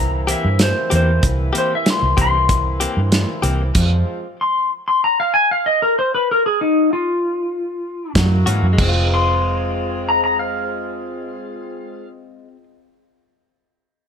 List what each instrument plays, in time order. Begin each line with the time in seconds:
Already playing: fingered electric bass C2, horn section E3 A#3 C4 E4, electric slide guitar A#5
0.27 clean electric guitar E3 A#3 C4 G4, electric slide guitar E5, closed hi-hat
0.45 fingered electric bass G2
0.59 electric slide guitar C5, snare, closed hi-hat
0.90 fingered electric bass E2, clean electric guitar E3 A#3 C4 G4, closed hi-hat
0.95 electric slide guitar C5
1.23 fingered electric bass C2, kick, closed hi-hat
1.53 clean electric guitar E3 A#3 C4 G4, closed hi-hat
1.58 electric slide guitar C5
1.75 electric slide guitar E5
1.86 snare, closed hi-hat
1.90 electric slide guitar C6
2.02 fingered electric bass C2
2.17 fingered electric bass C2, clean electric guitar E3 A#3 C4 G4, kick, closed hi-hat
2.21 electric slide guitar C6
2.49 kick, closed hi-hat
2.80 clean electric guitar E3 A#3 C4 G4, closed hi-hat
2.97 fingered electric bass G2
3.12 snare, closed hi-hat
3.42 fingered electric bass C2, clean electric guitar E3 A#3 C4 G4, closed hi-hat
3.75 fingered electric bass F2, horn section F3 G#3 C4 F4, kick, closed hi-hat, crash
4.41 electric slide guitar C6
4.88 electric slide guitar C6
5.04 electric slide guitar A#5
5.20 electric slide guitar F5
5.34 electric slide guitar G#5
5.51 electric slide guitar F5
5.66 electric slide guitar D#5
5.82 electric slide guitar A#4
5.99 electric slide guitar C5
6.14 electric slide guitar B4
6.31 electric slide guitar A#4
6.46 electric slide guitar G#4
6.61 electric slide guitar D#4
6.93 electric slide guitar F4
8.14 fingered electric bass F#2, horn section F#3 A#3 E4 F#4, kick, snare, closed hi-hat
8.46 fingered electric bass G#2, clean electric guitar E3 A#3 C#4 F#4, closed hi-hat
8.63 fingered electric bass F#2
8.73 clean electric guitar G#3
8.78 fingered electric bass F1, horn section G#3 C4 F4 G#4, clean electric guitar C4, kick, crash
8.89 clean electric guitar F4
9.14 electric slide guitar C6
10.09 electric slide guitar A#5
10.24 electric slide guitar A#5
10.39 electric slide guitar F5